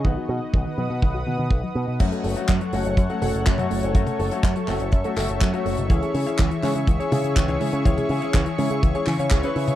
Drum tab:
CC |----------------|x---------------|----------------|----------------|
HH |----------------|xxoxxxoxxxoxxxox|xxoxxxoxxxoxxxox|xxoxxxoxxxoxxxox|
CP |----------------|----x-------x---|----x-x---x-x---|----x-x-----x---|
T1 |----------------|----------o--o--|-o-------------o|----------o--o--|
BD |o---o---o---o---|o---o---o---o---|o---o---o---o---|o---o---o---o---|

CC |----------------|
HH |xxoxxxoxxxoxxxox|
CP |----x-----x-x---|
T1 |-o-------------o|
BD |o---o---o---o---|